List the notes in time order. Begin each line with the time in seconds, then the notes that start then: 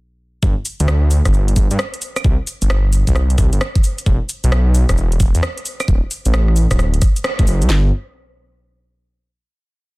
0.43 G1, kick, cabasa
0.65 open hi-hat, cabasa
0.80 D2, closed hi-hat, cabasa
0.88 cross-stick, cabasa
1.11 open hi-hat, cabasa
1.25 G1, kick, cross-stick, closed hi-hat, cabasa
1.34 cabasa
1.48 closed hi-hat
1.56 G1, kick, open hi-hat, cabasa
1.71 G2, closed hi-hat, cabasa
1.79 cross-stick, cabasa
1.94 closed hi-hat
2.02 open hi-hat, cabasa
2.16 cross-stick, closed hi-hat, cabasa, claves
2.24 C2, kick, cabasa
2.47 open hi-hat, cabasa
2.62 G1, closed hi-hat, cabasa
2.70 cross-stick, cabasa
2.93 open hi-hat, cabasa
3.07 C2, kick, closed hi-hat, cabasa
3.16 cross-stick, cabasa
3.30 closed hi-hat
3.38 C2, kick, cross-stick, open hi-hat, cabasa
3.53 G1, closed hi-hat, cabasa
3.61 cross-stick, cabasa
3.75 kick, closed hi-hat
3.84 open hi-hat, cabasa
3.98 closed hi-hat, cabasa
4.06 E1, kick, cabasa
4.29 open hi-hat, cabasa
4.44 B1, closed hi-hat, cabasa
4.52 cross-stick, cabasa
4.75 open hi-hat, cabasa
4.89 E1, kick, cross-stick, closed hi-hat, cabasa
4.97 cabasa
5.12 closed hi-hat
5.20 E1, kick, open hi-hat, cabasa
5.35 E2, closed hi-hat, cabasa
5.43 cross-stick, cabasa
5.58 closed hi-hat
5.66 open hi-hat, cabasa
5.80 cross-stick, closed hi-hat, cabasa, claves
5.88 D1, kick, cabasa
6.11 open hi-hat, cabasa
6.26 A1, closed hi-hat, cabasa
6.34 cross-stick, cabasa
6.48 cross-stick
6.56 open hi-hat, cabasa
6.71 D1, kick, cross-stick, closed hi-hat, cabasa
6.79 cross-stick, cabasa
6.94 closed hi-hat
7.02 kick, cross-stick, open hi-hat, cabasa
7.16 closed hi-hat, cabasa
7.24 cross-stick, cabasa
7.39 A1, kick, closed hi-hat
7.47 F#1, open hi-hat, cabasa
7.62 C2, closed hi-hat, cabasa
7.70 G1, snare, clap